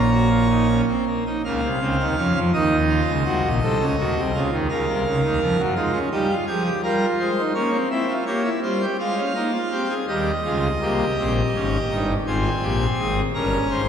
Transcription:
0.00 0.81 A#1 medium
0.00 0.81 A#2 medium
0.00 0.81 C#5 medium
0.00 0.81 A#5 medium
0.12 0.28 F#4 medium
0.31 0.47 F4 medium
0.50 0.67 D#4 medium
0.68 0.85 C#4 medium
0.88 1.04 C4 medium
1.07 1.24 A#3 medium
1.26 1.42 D#4 medium
1.45 1.61 C#2 medium
1.45 1.61 C#3 medium
1.45 1.68 A#3 medium
1.45 2.38 F5 medium
1.63 1.79 C2 medium
1.63 1.79 C3 medium
1.80 1.97 C#2 medium
1.80 1.96 C#3 medium
1.80 2.03 C4 medium
1.99 2.15 D#2 medium
1.99 2.15 D#3 medium
2.17 2.33 F2 medium
2.17 2.33 F3 medium
2.17 2.40 C#4 medium
2.36 2.51 F2 medium
2.36 2.51 F3 medium
2.54 3.00 D#2 medium
2.54 3.00 D#3 medium
2.54 2.76 D#4 loud
2.54 4.40 D#5 medium
2.89 3.12 F4 medium
3.08 3.23 C#2 medium
3.08 3.23 C#3 medium
3.25 3.41 C2 medium
3.25 3.41 C3 medium
3.25 3.48 F#4 medium
3.43 3.59 A#1 medium
3.43 3.59 A#2 medium
3.62 3.78 C2 medium
3.62 3.78 C3 medium
3.62 3.84 A4 medium
3.80 3.96 C#2 medium
3.80 3.95 C#3 medium
3.98 4.14 D#2 medium
3.98 4.14 D#3 medium
3.98 4.21 F#4 medium
4.16 4.32 C2 medium
4.16 4.32 C3 medium
4.34 4.50 C#2 medium
4.34 4.50 C#3 medium
4.34 4.56 F4 medium
4.51 4.67 D#2 medium
4.51 4.67 D#3 medium
4.69 4.85 C#2 medium
4.69 4.85 C#3 medium
4.69 5.61 A#4 loud
4.69 5.61 F5 medium
4.88 5.03 C2 medium
4.88 5.03 C3 medium
5.06 5.21 C#2 medium
5.06 5.21 C#3 medium
5.24 5.39 D#2 medium
5.24 5.39 D#3 medium
5.41 5.57 F2 medium
5.41 5.56 F3 medium
5.58 5.74 F#2 medium
5.58 5.74 F#3 medium
5.76 5.98 G#3 medium
5.76 5.92 D#4 medium
5.76 5.98 F4 medium
5.93 6.09 C#4 medium
6.12 6.34 G3 medium
6.12 6.27 D#4 medium
6.12 6.34 G4 medium
6.29 6.45 F4 medium
6.47 6.70 F3 medium
6.47 6.63 G4 medium
6.47 6.69 G#4 loud
6.65 6.81 G4 medium
6.83 7.06 G3 medium
6.83 7.30 F4 medium
6.83 7.06 A#4 medium
7.19 7.42 G#3 medium
7.19 7.41 C5 medium
7.38 7.53 D#4 medium
7.55 7.77 A#3 medium
7.55 7.70 C#4 medium
7.55 7.77 C#5 medium
7.73 7.88 C4 medium
7.90 8.13 C4 medium
7.90 8.06 E4 medium
7.90 8.13 E5 loud
8.08 8.24 F4 medium
8.26 8.49 A#3 medium
8.26 8.42 G4 medium
8.26 8.49 C#5 loud
8.44 8.60 E4 medium
8.63 8.85 G3 medium
8.63 8.78 F4 medium
8.63 8.85 C5 loud
8.81 8.97 G4 medium
8.99 9.22 G#3 medium
8.99 9.15 F4 medium
8.99 9.93 F5 loud
9.17 9.33 C#4 medium
9.35 9.58 A#3 medium
9.35 9.51 D#4 medium
9.53 9.69 F4 medium
9.71 9.94 C4 medium
9.71 9.87 G4 medium
9.90 10.06 G#4 medium
10.08 10.31 D#2 medium
10.08 10.31 D#3 medium
10.08 10.31 G3 medium
10.08 10.31 G4 medium
10.08 11.96 D#5 medium
10.45 10.68 C#2 medium
10.45 10.68 C#3 medium
10.45 10.68 G#3 medium
10.45 10.68 F4 medium
10.81 11.04 C2 medium
10.81 11.04 C3 medium
10.81 11.04 A#3 medium
10.81 12.06 G4 medium
11.19 11.41 A#1 medium
11.19 11.41 A#2 medium
11.19 11.41 C4 medium
11.55 11.77 G#1 medium
11.55 11.77 G#2 medium
11.55 11.77 C#4 medium
11.91 12.13 G1 medium
11.91 12.13 G2 medium
11.91 12.13 D#4 medium
12.27 12.49 G#1 medium
12.27 12.49 G#2 medium
12.27 13.20 C4 medium
12.27 12.49 F4 medium
12.27 13.20 G#5 medium
12.63 12.85 A#1 medium
12.63 12.85 A#2 medium
12.63 12.85 G4 medium
12.99 13.21 G#1 medium
12.99 13.22 G#2 medium
12.99 13.22 G#4 medium
13.35 13.57 G1 medium
13.35 13.57 G2 medium
13.35 13.81 C#4 medium
13.35 13.57 A#4 medium
13.35 13.88 A#5 medium
13.70 13.88 G#1 medium
13.70 13.88 G#2 medium
13.70 13.88 C5 medium

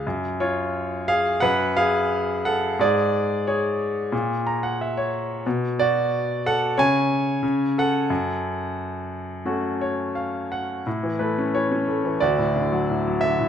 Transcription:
0.07 1.38 F#2 medium
0.40 1.04 F4 soft
0.40 1.04 C#5 medium
1.08 1.40 G#4 medium
1.08 1.39 F5 medium
1.40 2.74 F#2 medium
1.40 1.74 B4 medium
1.40 1.73 F#5 medium
1.77 2.41 G#4 medium
1.77 2.46 F5 medium
2.45 2.77 A4 soft
2.45 2.80 F#5 medium
2.79 4.09 G#2 medium
2.79 3.43 G#4 medium
2.79 3.43 D5 medium
3.47 5.10 G#4 soft
3.47 4.96 C#5 medium
4.12 5.42 A#2 medium
4.47 4.62 A#5 soft
4.63 4.78 F#5 medium
4.81 4.96 E5 soft
4.97 5.43 C#5 medium
5.46 6.73 B2 medium
5.79 6.41 F#4 medium
5.79 6.46 D5 medium
6.46 6.76 A4 medium
6.46 6.76 F#5 medium
6.78 7.41 C#3 medium
6.78 7.73 C#5 medium
6.78 7.80 G#5 medium
7.43 8.08 C#3 medium
7.78 10.13 A4 medium
7.78 10.13 F#5 medium
8.10 10.82 F#2 medium
9.45 10.82 A3 soft
9.45 10.82 C#4 soft
9.45 10.82 F#4 soft
9.81 10.14 C#5 soft
10.15 10.49 F5 soft
10.52 10.84 F#5 soft
10.86 12.17 A2 soft
11.03 11.53 E3 soft
11.19 11.86 A3 soft
11.19 11.54 B4 soft
11.38 11.70 C#4 soft
11.54 12.03 E3 soft
11.54 12.23 C#5 medium
11.71 12.20 C#4 soft
11.88 12.20 A3 soft
12.05 12.21 E3 soft
12.20 13.48 D2 medium
12.20 13.48 F#4 medium
12.20 13.24 D5 medium
12.39 12.88 A2 soft
12.56 13.22 D3 soft
12.72 13.06 F#3 soft
12.90 13.38 A2 soft
13.07 13.48 F#3 soft
13.21 13.48 D3 soft
13.21 13.48 E5 medium
13.39 13.48 A2 soft

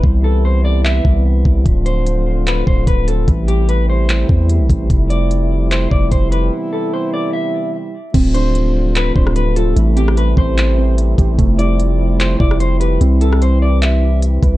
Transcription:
0.00 1.01 C2 loud
0.00 1.62 C3 medium
0.00 1.64 E3 medium
0.00 1.62 G3 medium
0.00 1.64 B3 medium
0.00 1.64 E4 medium
0.00 kick loud
0.24 0.43 A4 medium
0.45 0.64 C5 medium
0.65 0.84 D5 medium
0.84 1.23 E5 medium
0.84 clap loud
1.05 1.44 C2 loud
1.05 kick medium
1.45 1.65 C2 loud
1.45 kick loud
1.66 2.63 D1 loud
1.66 3.26 D3 medium
1.66 3.26 F3 medium
1.66 3.26 A3 medium
1.66 3.26 C4 medium
1.66 3.26 F4 medium
1.66 kick loud
1.66 closed hi-hat medium
1.86 2.43 C5 medium
1.86 closed hi-hat medium
2.06 closed hi-hat medium
2.47 2.66 B4 medium
2.47 clap loud
2.47 closed hi-hat medium
2.67 2.86 D1 loud
2.67 2.86 C5 medium
2.67 kick medium
2.87 3.26 D1 loud
2.87 3.07 B4 medium
2.87 kick medium
2.87 closed hi-hat medium
3.08 3.27 A4 medium
3.08 closed hi-hat medium
3.28 4.25 A1 loud
3.28 7.97 C3 medium
3.28 4.88 E3 medium
3.28 4.88 G3 medium
3.28 6.49 A3 medium
3.28 4.88 E4 medium
3.28 kick loud
3.28 closed hi-hat medium
3.48 3.67 G4 medium
3.48 closed hi-hat medium
3.69 3.88 B4 medium
3.69 closed hi-hat medium
3.90 4.46 C5 medium
4.09 clap loud
4.09 closed hi-hat medium
4.29 4.61 E2 loud
4.29 kick medium
4.49 closed hi-hat medium
4.60 4.69 B1 loud
4.70 4.89 A1 loud
4.70 kick loud
4.70 closed hi-hat medium
4.90 5.87 F1 loud
4.90 6.51 F3 medium
4.90 7.97 G3 medium
4.90 7.97 E4 medium
4.90 kick loud
4.90 closed hi-hat medium
5.10 5.67 D5 medium
5.10 closed hi-hat medium
5.31 closed hi-hat medium
5.71 5.90 C5 medium
5.71 clap loud
5.71 closed hi-hat medium
5.91 6.11 F1 loud
5.91 6.11 D5 medium
5.91 kick medium
6.12 6.51 F1 loud
6.12 6.31 C5 medium
6.12 kick medium
6.12 closed hi-hat medium
6.32 6.51 B4 medium
6.32 closed hi-hat medium
6.52 7.97 E3 medium
6.52 7.97 B3 medium
6.73 6.92 A4 medium
6.94 7.12 C5 medium
7.14 7.33 D5 medium
7.33 7.71 E5 medium
8.14 9.12 D1 loud
8.14 12.97 C3 medium
8.14 9.75 F3 medium
8.14 11.35 A3 medium
8.14 9.36 C4 loud
8.14 9.75 D4 medium
8.14 9.75 F4 medium
8.14 kick loud
8.14 closed hi-hat medium
8.14 crash loud
8.34 9.14 D4 medium
8.34 8.92 C5 medium
8.34 closed hi-hat medium
8.55 closed hi-hat medium
8.95 9.15 B4 medium
8.95 clap loud
8.95 closed hi-hat medium
9.16 9.74 D1 loud
9.16 9.76 D4 medium
9.16 9.35 C5 medium
9.16 kick medium
9.27 cross-stick loud
9.36 9.55 B4 medium
9.36 closed hi-hat medium
9.56 9.77 F4 medium
9.56 9.76 A4 medium
9.56 closed hi-hat medium
9.76 10.35 A1 loud
9.76 11.37 E3 medium
9.76 11.37 G3 medium
9.76 10.98 A3 medium
9.76 14.57 E4 medium
9.76 closed hi-hat medium
9.96 10.77 C4 medium
9.96 10.16 G4 medium
9.96 closed hi-hat medium
10.08 cross-stick loud
10.17 10.37 B4 medium
10.17 closed hi-hat medium
10.37 11.15 A1 loud
10.37 10.95 C5 loud
10.37 kick medium
10.58 clap loud
10.58 closed hi-hat medium
10.78 11.39 C4 medium
10.98 closed hi-hat medium
11.18 11.38 A1 loud
11.18 11.39 G4 medium
11.18 kick loud
11.18 closed hi-hat medium
11.38 12.36 F1 loud
11.38 12.99 F3 medium
11.38 14.57 G3 medium
11.38 12.60 A3 loud
11.38 12.99 A3 medium
11.38 kick loud
11.38 closed hi-hat medium
11.59 12.39 E4 medium
11.59 12.16 D5 medium
11.59 closed hi-hat medium
11.80 closed hi-hat medium
12.20 12.39 C5 medium
12.20 clap loud
12.20 closed hi-hat medium
12.40 12.98 F1 loud
12.40 13.01 E4 medium
12.40 12.59 D5 medium
12.40 kick loud
12.51 cross-stick loud
12.60 12.80 C5 medium
12.60 closed hi-hat medium
12.80 13.01 G4 medium
12.80 13.00 B4 medium
12.80 closed hi-hat medium
13.01 14.39 C2 loud
13.01 14.57 C3 medium
13.01 14.57 E3 medium
13.01 14.22 C4 medium
13.01 14.57 B4 medium
13.01 closed hi-hat medium
13.21 14.01 E4 medium
13.21 13.41 A4 medium
13.21 closed hi-hat medium
13.33 cross-stick loud
13.42 13.61 C5 medium
13.42 closed hi-hat medium
13.62 13.81 D5 medium
13.82 14.20 E5 medium
13.82 clap loud
13.82 closed hi-hat medium
14.02 14.57 E4 medium
14.22 closed hi-hat medium
14.43 14.57 C2 loud
14.43 14.57 B4 medium
14.43 kick loud
14.43 closed hi-hat medium

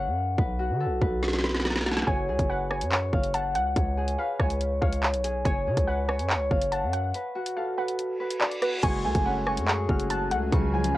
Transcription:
0.00 0.86 G#4 medium
0.00 0.38 B4 medium
0.00 1.45 C#5 medium
0.00 1.57 F#5 medium
0.07 0.37 F#2 loud
0.38 0.72 B1 loud
0.38 1.01 B4 medium
0.38 kick loud
0.59 1.86 F#4 medium
0.70 0.87 D3 loud
0.80 2.35 A4 medium
0.86 1.01 B1 loud
1.01 2.03 B1 loud
1.01 1.43 B4 medium
1.01 kick loud
1.23 snare medium
1.28 snare medium
1.33 snare medium
1.39 snare medium
1.44 2.49 B4 medium
1.44 snare medium
1.49 snare medium
1.54 snare medium
1.60 snare medium
1.65 snare medium
1.70 snare medium
1.76 snare medium
1.81 snare medium
1.86 3.19 F#4 medium
1.86 snare loud
1.91 snare medium
1.97 snare loud
2.02 snare medium
2.07 2.30 F#1 loud
2.07 2.70 C#5 loud
2.07 2.47 G#5 loud
2.07 kick loud
2.07 closed hi-hat medium
2.28 2.38 C#2 loud
2.28 3.97 G#4 medium
2.39 2.83 F#1 loud
2.39 kick medium
2.39 closed hi-hat medium
2.50 4.18 B4 medium
2.50 2.70 F#5 medium
2.71 2.91 C#5 medium
2.71 3.30 G#5 medium
2.71 cross-stick medium
2.81 3.11 F#2 loud
2.81 closed hi-hat medium
2.92 3.76 C#5 medium
2.92 clap loud
3.13 3.57 F#1 loud
3.13 3.40 F5 medium
3.13 kick loud
3.23 closed hi-hat medium
3.34 4.95 F#5 medium
3.34 3.54 A5 medium
3.34 closed hi-hat medium
3.55 3.75 C#2 loud
3.55 3.75 F#5 medium
3.55 closed hi-hat medium
3.76 4.17 C#2 loud
3.76 4.40 C#5 medium
3.76 kick loud
3.76 closed hi-hat medium
3.97 5.23 G#4 medium
4.08 closed hi-hat medium
4.19 5.88 B4 medium
4.19 4.39 F5 medium
4.40 4.80 C#2 loud
4.40 4.82 C#5 medium
4.40 4.79 G#5 medium
4.40 kick loud
4.40 cross-stick medium
4.50 closed hi-hat medium
4.61 closed hi-hat medium
4.82 5.15 C#2 loud
4.82 5.45 C#5 medium
4.82 5.41 F5 medium
4.82 kick loud
4.92 closed hi-hat medium
5.03 clap loud
5.13 5.44 B1 loud
5.13 closed hi-hat medium
5.24 5.67 G#4 medium
5.24 closed hi-hat medium
5.45 5.68 F#1 loud
5.45 6.08 C#5 loud
5.45 5.85 G#5 loud
5.45 kick loud
5.45 closed hi-hat medium
5.66 5.76 C#3 loud
5.66 7.62 G#4 medium
5.77 6.21 C#2 loud
5.77 kick medium
5.77 closed hi-hat medium
5.87 7.14 B4 medium
5.87 6.08 F#5 medium
6.08 6.29 C#5 medium
6.08 6.68 G#5 medium
6.08 cross-stick medium
6.19 6.37 F#2 loud
6.19 closed hi-hat medium
6.30 8.21 C#5 loud
6.30 clap loud
6.35 6.50 C#2 loud
6.51 6.84 F#1 loud
6.51 6.78 F5 medium
6.51 kick loud
6.62 closed hi-hat medium
6.72 8.33 F#5 medium
6.72 6.92 A5 medium
6.72 closed hi-hat medium
6.83 7.13 F#2 loud
6.93 7.13 F#5 medium
6.93 closed hi-hat medium
7.14 7.77 B4 medium
7.14 closed hi-hat medium
7.35 8.62 F#4 medium
7.46 closed hi-hat medium
7.56 9.11 A4 medium
7.56 7.77 F5 medium
7.77 8.19 B4 medium
7.77 8.37 F#5 medium
7.88 closed hi-hat medium
7.99 closed hi-hat medium
7.99 reverse cymbal medium
8.20 10.25 B4 medium
8.31 closed hi-hat medium
8.41 8.61 D5 medium
8.41 clap loud
8.52 closed hi-hat medium
8.62 9.96 F#4 medium
8.62 8.82 B4 medium
8.62 cross-stick medium
8.62 closed hi-hat medium
8.83 9.06 F#1 loud
8.83 10.51 F#3 medium
8.83 9.89 G#3 loud
8.83 10.97 C#4 medium
8.83 10.97 G#4 loud
8.83 9.23 G#5 loud
8.83 9.46 C#6 loud
8.83 kick loud
8.83 closed hi-hat medium
8.83 crash loud
9.05 9.15 C#2 loud
9.05 10.10 A3 medium
9.05 10.55 G#5 medium
9.15 9.59 F#1 loud
9.15 kick loud
9.15 closed hi-hat medium
9.26 10.31 C#4 medium
9.26 9.46 F#5 medium
9.26 10.61 B5 medium
9.47 9.88 F#4 medium
9.47 10.06 G#5 medium
9.47 9.67 C#6 medium
9.47 cross-stick medium
9.57 9.87 F#2 loud
9.57 closed hi-hat medium
9.68 10.52 G#4 loud
9.68 10.52 C#6 loud
9.68 clap loud
9.89 10.33 F#1 loud
9.89 10.52 F#4 medium
9.89 10.16 F6 medium
9.89 kick loud
10.00 closed hi-hat medium
10.10 10.30 A5 medium
10.10 10.97 F#6 medium
10.10 closed hi-hat medium
10.31 10.51 C#2 loud
10.31 10.52 A3 medium
10.31 10.51 F#5 medium
10.31 closed hi-hat medium
10.52 10.93 C#2 loud
10.52 10.97 C#3 loud
10.52 10.97 F3 medium
10.52 10.97 G#3 medium
10.52 10.97 C#6 medium
10.52 kick loud
10.52 closed hi-hat medium
10.74 10.97 F3 medium
10.74 10.97 G#5 medium
10.84 closed hi-hat medium

